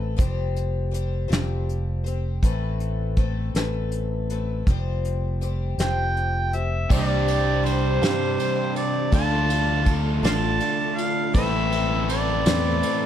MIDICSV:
0, 0, Header, 1, 8, 480
1, 0, Start_track
1, 0, Key_signature, 0, "minor"
1, 0, Tempo, 744417
1, 126, Time_signature, 6, 3, 24, 8
1, 8420, End_track
2, 0, Start_track
2, 0, Title_t, "Harmonica"
2, 0, Program_c, 0, 22
2, 3747, Note_on_c, 0, 79, 107
2, 4223, Note_on_c, 0, 76, 86
2, 4233, Note_off_c, 0, 79, 0
2, 4463, Note_on_c, 0, 74, 95
2, 4473, Note_off_c, 0, 76, 0
2, 4935, Note_on_c, 0, 72, 100
2, 4945, Note_off_c, 0, 74, 0
2, 5649, Note_off_c, 0, 72, 0
2, 5653, Note_on_c, 0, 74, 84
2, 5872, Note_off_c, 0, 74, 0
2, 5896, Note_on_c, 0, 81, 126
2, 6403, Note_off_c, 0, 81, 0
2, 6610, Note_on_c, 0, 74, 78
2, 6610, Note_on_c, 0, 77, 78
2, 6610, Note_on_c, 0, 81, 111
2, 6650, Note_off_c, 0, 74, 0
2, 6658, Note_off_c, 0, 77, 0
2, 7081, Note_on_c, 0, 77, 91
2, 7090, Note_off_c, 0, 81, 0
2, 7309, Note_off_c, 0, 77, 0
2, 7313, Note_on_c, 0, 76, 114
2, 7771, Note_off_c, 0, 76, 0
2, 7801, Note_on_c, 0, 74, 108
2, 8420, Note_off_c, 0, 74, 0
2, 8420, End_track
3, 0, Start_track
3, 0, Title_t, "Upright piano"
3, 0, Program_c, 1, 0
3, 4445, Note_on_c, 1, 67, 78
3, 4451, Note_on_c, 1, 72, 67
3, 4453, Note_on_c, 1, 74, 84
3, 5022, Note_off_c, 1, 67, 0
3, 5025, Note_off_c, 1, 72, 0
3, 5026, Note_off_c, 1, 74, 0
3, 5168, Note_on_c, 1, 67, 66
3, 5170, Note_on_c, 1, 72, 62
3, 5172, Note_on_c, 1, 77, 79
3, 5743, Note_off_c, 1, 67, 0
3, 5744, Note_off_c, 1, 72, 0
3, 5745, Note_off_c, 1, 77, 0
3, 5880, Note_on_c, 1, 65, 78
3, 5883, Note_on_c, 1, 69, 71
3, 5890, Note_on_c, 1, 74, 88
3, 6458, Note_off_c, 1, 65, 0
3, 6459, Note_off_c, 1, 69, 0
3, 6463, Note_off_c, 1, 74, 0
3, 6599, Note_on_c, 1, 65, 68
3, 6604, Note_on_c, 1, 69, 60
3, 6607, Note_on_c, 1, 74, 81
3, 7177, Note_off_c, 1, 65, 0
3, 7179, Note_off_c, 1, 69, 0
3, 7181, Note_off_c, 1, 74, 0
3, 7315, Note_on_c, 1, 60, 78
3, 7322, Note_on_c, 1, 71, 91
3, 7323, Note_on_c, 1, 69, 71
3, 7895, Note_off_c, 1, 60, 0
3, 7898, Note_off_c, 1, 71, 0
3, 7899, Note_off_c, 1, 69, 0
3, 8031, Note_on_c, 1, 60, 77
3, 8039, Note_on_c, 1, 69, 67
3, 8041, Note_on_c, 1, 74, 73
3, 8420, Note_off_c, 1, 60, 0
3, 8420, Note_off_c, 1, 69, 0
3, 8420, Note_off_c, 1, 74, 0
3, 8420, End_track
4, 0, Start_track
4, 0, Title_t, "Tonewheel organ"
4, 0, Program_c, 2, 16
4, 4440, Note_on_c, 2, 72, 69
4, 4445, Note_on_c, 2, 67, 74
4, 4448, Note_on_c, 2, 62, 72
4, 5867, Note_off_c, 2, 72, 0
4, 5869, Note_off_c, 2, 67, 0
4, 5870, Note_off_c, 2, 62, 0
4, 5873, Note_on_c, 2, 69, 75
4, 5878, Note_on_c, 2, 62, 70
4, 5882, Note_on_c, 2, 65, 69
4, 7302, Note_off_c, 2, 69, 0
4, 7305, Note_off_c, 2, 62, 0
4, 7307, Note_off_c, 2, 65, 0
4, 7318, Note_on_c, 2, 71, 72
4, 7324, Note_on_c, 2, 60, 77
4, 7324, Note_on_c, 2, 69, 76
4, 8420, Note_off_c, 2, 60, 0
4, 8420, Note_off_c, 2, 69, 0
4, 8420, Note_off_c, 2, 71, 0
4, 8420, End_track
5, 0, Start_track
5, 0, Title_t, "Twelve-string acoustic guitar"
5, 0, Program_c, 3, 25
5, 0, Note_on_c, 3, 57, 42
5, 0, Note_on_c, 3, 60, 46
5, 0, Note_on_c, 3, 69, 48
5, 0, Note_on_c, 3, 71, 52
5, 106, Note_on_c, 3, 53, 74
5, 107, Note_off_c, 3, 60, 0
5, 110, Note_off_c, 3, 57, 0
5, 113, Note_on_c, 3, 55, 77
5, 114, Note_off_c, 3, 69, 0
5, 115, Note_off_c, 3, 71, 0
5, 115, Note_on_c, 3, 60, 87
5, 117, Note_on_c, 3, 67, 83
5, 120, Note_on_c, 3, 72, 84
5, 581, Note_off_c, 3, 55, 0
5, 588, Note_on_c, 3, 55, 64
5, 593, Note_off_c, 3, 60, 0
5, 595, Note_on_c, 3, 60, 62
5, 596, Note_off_c, 3, 53, 0
5, 597, Note_off_c, 3, 67, 0
5, 605, Note_on_c, 3, 67, 68
5, 606, Note_off_c, 3, 72, 0
5, 609, Note_on_c, 3, 72, 72
5, 819, Note_off_c, 3, 72, 0
5, 825, Note_off_c, 3, 67, 0
5, 827, Note_off_c, 3, 60, 0
5, 827, Note_on_c, 3, 72, 69
5, 830, Note_off_c, 3, 55, 0
5, 832, Note_on_c, 3, 67, 72
5, 834, Note_on_c, 3, 60, 65
5, 838, Note_on_c, 3, 55, 64
5, 839, Note_on_c, 3, 53, 57
5, 1313, Note_off_c, 3, 72, 0
5, 1316, Note_on_c, 3, 72, 56
5, 1320, Note_off_c, 3, 67, 0
5, 1322, Note_off_c, 3, 55, 0
5, 1323, Note_off_c, 3, 53, 0
5, 1328, Note_on_c, 3, 67, 44
5, 1334, Note_off_c, 3, 60, 0
5, 1337, Note_on_c, 3, 60, 43
5, 1560, Note_off_c, 3, 60, 0
5, 1561, Note_off_c, 3, 72, 0
5, 1563, Note_on_c, 3, 45, 71
5, 1567, Note_off_c, 3, 67, 0
5, 1567, Note_on_c, 3, 52, 86
5, 1568, Note_on_c, 3, 60, 76
5, 1570, Note_on_c, 3, 57, 74
5, 1572, Note_on_c, 3, 69, 75
5, 1573, Note_on_c, 3, 71, 79
5, 2035, Note_off_c, 3, 57, 0
5, 2043, Note_on_c, 3, 57, 66
5, 2045, Note_off_c, 3, 45, 0
5, 2045, Note_off_c, 3, 69, 0
5, 2047, Note_off_c, 3, 52, 0
5, 2047, Note_off_c, 3, 60, 0
5, 2050, Note_off_c, 3, 71, 0
5, 2050, Note_on_c, 3, 60, 68
5, 2053, Note_on_c, 3, 69, 71
5, 2059, Note_on_c, 3, 71, 69
5, 2285, Note_off_c, 3, 57, 0
5, 2285, Note_off_c, 3, 69, 0
5, 2287, Note_off_c, 3, 71, 0
5, 2288, Note_off_c, 3, 60, 0
5, 2293, Note_on_c, 3, 69, 69
5, 2295, Note_on_c, 3, 71, 79
5, 2297, Note_on_c, 3, 57, 55
5, 2297, Note_on_c, 3, 60, 62
5, 2301, Note_on_c, 3, 52, 56
5, 2306, Note_on_c, 3, 45, 55
5, 2767, Note_off_c, 3, 71, 0
5, 2770, Note_off_c, 3, 69, 0
5, 2772, Note_off_c, 3, 57, 0
5, 2774, Note_off_c, 3, 52, 0
5, 2774, Note_on_c, 3, 71, 54
5, 2776, Note_off_c, 3, 45, 0
5, 2782, Note_off_c, 3, 60, 0
5, 2782, Note_on_c, 3, 69, 50
5, 2785, Note_on_c, 3, 60, 46
5, 2793, Note_on_c, 3, 57, 43
5, 3011, Note_off_c, 3, 71, 0
5, 3014, Note_off_c, 3, 69, 0
5, 3015, Note_on_c, 3, 53, 67
5, 3016, Note_off_c, 3, 60, 0
5, 3019, Note_off_c, 3, 57, 0
5, 3021, Note_on_c, 3, 55, 74
5, 3025, Note_on_c, 3, 60, 73
5, 3027, Note_on_c, 3, 67, 79
5, 3031, Note_on_c, 3, 72, 88
5, 3481, Note_off_c, 3, 55, 0
5, 3485, Note_off_c, 3, 60, 0
5, 3489, Note_on_c, 3, 55, 61
5, 3491, Note_off_c, 3, 53, 0
5, 3493, Note_on_c, 3, 60, 59
5, 3494, Note_off_c, 3, 67, 0
5, 3499, Note_off_c, 3, 72, 0
5, 3502, Note_on_c, 3, 67, 70
5, 3508, Note_on_c, 3, 72, 57
5, 3728, Note_off_c, 3, 55, 0
5, 3730, Note_off_c, 3, 60, 0
5, 3730, Note_off_c, 3, 72, 0
5, 3734, Note_off_c, 3, 67, 0
5, 3738, Note_on_c, 3, 72, 70
5, 3741, Note_on_c, 3, 67, 75
5, 3744, Note_on_c, 3, 60, 70
5, 3745, Note_on_c, 3, 55, 61
5, 3749, Note_on_c, 3, 53, 59
5, 4209, Note_off_c, 3, 72, 0
5, 4213, Note_off_c, 3, 67, 0
5, 4215, Note_off_c, 3, 55, 0
5, 4215, Note_off_c, 3, 60, 0
5, 4217, Note_off_c, 3, 53, 0
5, 4217, Note_on_c, 3, 72, 47
5, 4224, Note_on_c, 3, 67, 49
5, 4233, Note_on_c, 3, 60, 40
5, 4448, Note_off_c, 3, 60, 0
5, 4451, Note_off_c, 3, 72, 0
5, 4455, Note_off_c, 3, 67, 0
5, 4456, Note_on_c, 3, 60, 80
5, 4458, Note_on_c, 3, 62, 72
5, 4463, Note_on_c, 3, 72, 78
5, 4464, Note_on_c, 3, 67, 81
5, 4683, Note_off_c, 3, 72, 0
5, 4691, Note_off_c, 3, 60, 0
5, 4691, Note_off_c, 3, 62, 0
5, 4691, Note_on_c, 3, 72, 46
5, 4695, Note_off_c, 3, 67, 0
5, 4704, Note_on_c, 3, 67, 40
5, 4711, Note_on_c, 3, 62, 42
5, 4919, Note_off_c, 3, 62, 0
5, 4921, Note_on_c, 3, 60, 62
5, 4927, Note_on_c, 3, 62, 57
5, 4928, Note_off_c, 3, 72, 0
5, 4929, Note_off_c, 3, 67, 0
5, 4937, Note_on_c, 3, 67, 67
5, 4940, Note_on_c, 3, 72, 69
5, 5161, Note_off_c, 3, 72, 0
5, 5163, Note_off_c, 3, 60, 0
5, 5166, Note_off_c, 3, 62, 0
5, 5166, Note_off_c, 3, 67, 0
5, 5169, Note_on_c, 3, 72, 74
5, 5174, Note_on_c, 3, 67, 65
5, 5180, Note_on_c, 3, 62, 59
5, 5183, Note_on_c, 3, 60, 53
5, 5396, Note_off_c, 3, 60, 0
5, 5403, Note_off_c, 3, 62, 0
5, 5404, Note_on_c, 3, 60, 59
5, 5406, Note_off_c, 3, 67, 0
5, 5407, Note_off_c, 3, 72, 0
5, 5411, Note_on_c, 3, 62, 64
5, 5414, Note_on_c, 3, 67, 70
5, 5421, Note_on_c, 3, 72, 70
5, 5633, Note_off_c, 3, 72, 0
5, 5640, Note_on_c, 3, 72, 49
5, 5643, Note_off_c, 3, 67, 0
5, 5644, Note_off_c, 3, 60, 0
5, 5648, Note_off_c, 3, 62, 0
5, 5651, Note_on_c, 3, 67, 42
5, 5657, Note_on_c, 3, 62, 45
5, 5879, Note_on_c, 3, 50, 78
5, 5880, Note_off_c, 3, 62, 0
5, 5882, Note_off_c, 3, 72, 0
5, 5887, Note_off_c, 3, 67, 0
5, 5887, Note_on_c, 3, 57, 72
5, 5888, Note_on_c, 3, 62, 84
5, 5889, Note_on_c, 3, 65, 76
5, 5896, Note_on_c, 3, 69, 80
5, 6111, Note_off_c, 3, 69, 0
5, 6118, Note_on_c, 3, 69, 47
5, 6121, Note_off_c, 3, 50, 0
5, 6122, Note_off_c, 3, 65, 0
5, 6125, Note_off_c, 3, 57, 0
5, 6126, Note_off_c, 3, 62, 0
5, 6130, Note_on_c, 3, 65, 48
5, 6140, Note_on_c, 3, 62, 39
5, 6351, Note_off_c, 3, 62, 0
5, 6354, Note_off_c, 3, 65, 0
5, 6354, Note_on_c, 3, 57, 59
5, 6358, Note_on_c, 3, 62, 70
5, 6361, Note_off_c, 3, 69, 0
5, 6361, Note_on_c, 3, 65, 62
5, 6370, Note_on_c, 3, 69, 63
5, 6587, Note_off_c, 3, 69, 0
5, 6589, Note_off_c, 3, 65, 0
5, 6594, Note_off_c, 3, 62, 0
5, 6595, Note_on_c, 3, 69, 71
5, 6597, Note_on_c, 3, 65, 64
5, 6598, Note_off_c, 3, 57, 0
5, 6602, Note_on_c, 3, 62, 63
5, 6605, Note_on_c, 3, 57, 61
5, 6608, Note_on_c, 3, 50, 58
5, 6821, Note_off_c, 3, 57, 0
5, 6826, Note_off_c, 3, 62, 0
5, 6829, Note_on_c, 3, 57, 51
5, 6830, Note_off_c, 3, 65, 0
5, 6834, Note_on_c, 3, 62, 65
5, 6835, Note_off_c, 3, 69, 0
5, 6837, Note_on_c, 3, 65, 62
5, 6843, Note_on_c, 3, 69, 63
5, 6845, Note_off_c, 3, 50, 0
5, 7062, Note_off_c, 3, 69, 0
5, 7070, Note_on_c, 3, 69, 50
5, 7071, Note_off_c, 3, 65, 0
5, 7075, Note_off_c, 3, 57, 0
5, 7078, Note_off_c, 3, 62, 0
5, 7079, Note_on_c, 3, 65, 52
5, 7087, Note_on_c, 3, 62, 49
5, 7306, Note_on_c, 3, 45, 76
5, 7310, Note_off_c, 3, 62, 0
5, 7310, Note_on_c, 3, 52, 75
5, 7313, Note_on_c, 3, 60, 86
5, 7314, Note_off_c, 3, 65, 0
5, 7315, Note_on_c, 3, 57, 73
5, 7316, Note_off_c, 3, 69, 0
5, 7317, Note_on_c, 3, 64, 69
5, 7321, Note_on_c, 3, 71, 71
5, 7540, Note_off_c, 3, 71, 0
5, 7548, Note_on_c, 3, 71, 49
5, 7554, Note_off_c, 3, 45, 0
5, 7554, Note_off_c, 3, 64, 0
5, 7556, Note_off_c, 3, 52, 0
5, 7557, Note_off_c, 3, 60, 0
5, 7558, Note_off_c, 3, 57, 0
5, 7562, Note_on_c, 3, 64, 47
5, 7564, Note_on_c, 3, 60, 45
5, 7568, Note_on_c, 3, 57, 41
5, 7783, Note_off_c, 3, 57, 0
5, 7788, Note_off_c, 3, 60, 0
5, 7791, Note_on_c, 3, 57, 54
5, 7793, Note_off_c, 3, 64, 0
5, 7795, Note_off_c, 3, 71, 0
5, 7796, Note_on_c, 3, 60, 62
5, 7801, Note_on_c, 3, 64, 71
5, 7807, Note_on_c, 3, 71, 70
5, 8030, Note_off_c, 3, 71, 0
5, 8031, Note_off_c, 3, 64, 0
5, 8032, Note_off_c, 3, 60, 0
5, 8036, Note_off_c, 3, 57, 0
5, 8038, Note_on_c, 3, 71, 75
5, 8039, Note_on_c, 3, 64, 69
5, 8040, Note_on_c, 3, 60, 69
5, 8043, Note_on_c, 3, 52, 63
5, 8043, Note_on_c, 3, 57, 60
5, 8047, Note_on_c, 3, 45, 60
5, 8264, Note_off_c, 3, 57, 0
5, 8272, Note_on_c, 3, 57, 62
5, 8273, Note_off_c, 3, 60, 0
5, 8279, Note_off_c, 3, 71, 0
5, 8280, Note_off_c, 3, 64, 0
5, 8281, Note_on_c, 3, 60, 60
5, 8282, Note_off_c, 3, 52, 0
5, 8284, Note_off_c, 3, 45, 0
5, 8288, Note_on_c, 3, 64, 70
5, 8293, Note_on_c, 3, 71, 66
5, 8420, Note_off_c, 3, 57, 0
5, 8420, Note_off_c, 3, 60, 0
5, 8420, Note_off_c, 3, 64, 0
5, 8420, Note_off_c, 3, 71, 0
5, 8420, End_track
6, 0, Start_track
6, 0, Title_t, "Overdriven electric guitar"
6, 0, Program_c, 4, 29
6, 4446, Note_on_c, 4, 48, 78
6, 4452, Note_on_c, 4, 55, 75
6, 5870, Note_off_c, 4, 48, 0
6, 5873, Note_off_c, 4, 55, 0
6, 8420, End_track
7, 0, Start_track
7, 0, Title_t, "Fingered electric bass"
7, 0, Program_c, 5, 33
7, 0, Note_on_c, 5, 33, 75
7, 99, Note_off_c, 5, 33, 0
7, 121, Note_on_c, 5, 29, 88
7, 818, Note_off_c, 5, 29, 0
7, 840, Note_on_c, 5, 29, 81
7, 1538, Note_off_c, 5, 29, 0
7, 1563, Note_on_c, 5, 33, 86
7, 2259, Note_off_c, 5, 33, 0
7, 2286, Note_on_c, 5, 33, 80
7, 2980, Note_off_c, 5, 33, 0
7, 3012, Note_on_c, 5, 29, 89
7, 3703, Note_off_c, 5, 29, 0
7, 3726, Note_on_c, 5, 29, 80
7, 4420, Note_off_c, 5, 29, 0
7, 4452, Note_on_c, 5, 36, 99
7, 5142, Note_off_c, 5, 36, 0
7, 5172, Note_on_c, 5, 43, 94
7, 5395, Note_off_c, 5, 43, 0
7, 5883, Note_on_c, 5, 38, 104
7, 6577, Note_off_c, 5, 38, 0
7, 6597, Note_on_c, 5, 33, 96
7, 6827, Note_off_c, 5, 33, 0
7, 7318, Note_on_c, 5, 33, 110
7, 8013, Note_off_c, 5, 33, 0
7, 8034, Note_on_c, 5, 40, 85
7, 8264, Note_off_c, 5, 40, 0
7, 8420, End_track
8, 0, Start_track
8, 0, Title_t, "Drums"
8, 121, Note_on_c, 9, 36, 94
8, 124, Note_on_c, 9, 42, 74
8, 186, Note_off_c, 9, 36, 0
8, 188, Note_off_c, 9, 42, 0
8, 364, Note_on_c, 9, 42, 58
8, 428, Note_off_c, 9, 42, 0
8, 607, Note_on_c, 9, 42, 62
8, 672, Note_off_c, 9, 42, 0
8, 849, Note_on_c, 9, 42, 71
8, 856, Note_on_c, 9, 38, 109
8, 913, Note_off_c, 9, 42, 0
8, 921, Note_off_c, 9, 38, 0
8, 1092, Note_on_c, 9, 42, 58
8, 1156, Note_off_c, 9, 42, 0
8, 1329, Note_on_c, 9, 42, 56
8, 1394, Note_off_c, 9, 42, 0
8, 1565, Note_on_c, 9, 36, 83
8, 1570, Note_on_c, 9, 42, 71
8, 1630, Note_off_c, 9, 36, 0
8, 1635, Note_off_c, 9, 42, 0
8, 1807, Note_on_c, 9, 42, 60
8, 1872, Note_off_c, 9, 42, 0
8, 2042, Note_on_c, 9, 42, 56
8, 2045, Note_on_c, 9, 36, 71
8, 2107, Note_off_c, 9, 42, 0
8, 2109, Note_off_c, 9, 36, 0
8, 2288, Note_on_c, 9, 42, 80
8, 2296, Note_on_c, 9, 38, 97
8, 2353, Note_off_c, 9, 42, 0
8, 2361, Note_off_c, 9, 38, 0
8, 2526, Note_on_c, 9, 42, 55
8, 2591, Note_off_c, 9, 42, 0
8, 2772, Note_on_c, 9, 42, 56
8, 2836, Note_off_c, 9, 42, 0
8, 3010, Note_on_c, 9, 36, 96
8, 3012, Note_on_c, 9, 42, 67
8, 3075, Note_off_c, 9, 36, 0
8, 3077, Note_off_c, 9, 42, 0
8, 3255, Note_on_c, 9, 42, 57
8, 3320, Note_off_c, 9, 42, 0
8, 3494, Note_on_c, 9, 42, 56
8, 3559, Note_off_c, 9, 42, 0
8, 3732, Note_on_c, 9, 42, 80
8, 3740, Note_on_c, 9, 38, 101
8, 3796, Note_off_c, 9, 42, 0
8, 3804, Note_off_c, 9, 38, 0
8, 3977, Note_on_c, 9, 42, 53
8, 4041, Note_off_c, 9, 42, 0
8, 4212, Note_on_c, 9, 42, 57
8, 4276, Note_off_c, 9, 42, 0
8, 4451, Note_on_c, 9, 36, 105
8, 4454, Note_on_c, 9, 49, 104
8, 4516, Note_off_c, 9, 36, 0
8, 4518, Note_off_c, 9, 49, 0
8, 4695, Note_on_c, 9, 51, 79
8, 4759, Note_off_c, 9, 51, 0
8, 4939, Note_on_c, 9, 51, 68
8, 5004, Note_off_c, 9, 51, 0
8, 5175, Note_on_c, 9, 51, 88
8, 5183, Note_on_c, 9, 38, 105
8, 5240, Note_off_c, 9, 51, 0
8, 5247, Note_off_c, 9, 38, 0
8, 5413, Note_on_c, 9, 51, 66
8, 5478, Note_off_c, 9, 51, 0
8, 5648, Note_on_c, 9, 51, 70
8, 5713, Note_off_c, 9, 51, 0
8, 5884, Note_on_c, 9, 36, 98
8, 5886, Note_on_c, 9, 51, 84
8, 5949, Note_off_c, 9, 36, 0
8, 5950, Note_off_c, 9, 51, 0
8, 6124, Note_on_c, 9, 51, 73
8, 6188, Note_off_c, 9, 51, 0
8, 6358, Note_on_c, 9, 51, 70
8, 6360, Note_on_c, 9, 36, 83
8, 6423, Note_off_c, 9, 51, 0
8, 6424, Note_off_c, 9, 36, 0
8, 6604, Note_on_c, 9, 51, 94
8, 6612, Note_on_c, 9, 38, 112
8, 6669, Note_off_c, 9, 51, 0
8, 6676, Note_off_c, 9, 38, 0
8, 6837, Note_on_c, 9, 51, 66
8, 6901, Note_off_c, 9, 51, 0
8, 7081, Note_on_c, 9, 51, 67
8, 7145, Note_off_c, 9, 51, 0
8, 7316, Note_on_c, 9, 36, 107
8, 7317, Note_on_c, 9, 51, 86
8, 7381, Note_off_c, 9, 36, 0
8, 7381, Note_off_c, 9, 51, 0
8, 7559, Note_on_c, 9, 51, 71
8, 7623, Note_off_c, 9, 51, 0
8, 7797, Note_on_c, 9, 51, 78
8, 7861, Note_off_c, 9, 51, 0
8, 8033, Note_on_c, 9, 51, 104
8, 8040, Note_on_c, 9, 38, 122
8, 8097, Note_off_c, 9, 51, 0
8, 8105, Note_off_c, 9, 38, 0
8, 8273, Note_on_c, 9, 51, 78
8, 8337, Note_off_c, 9, 51, 0
8, 8420, End_track
0, 0, End_of_file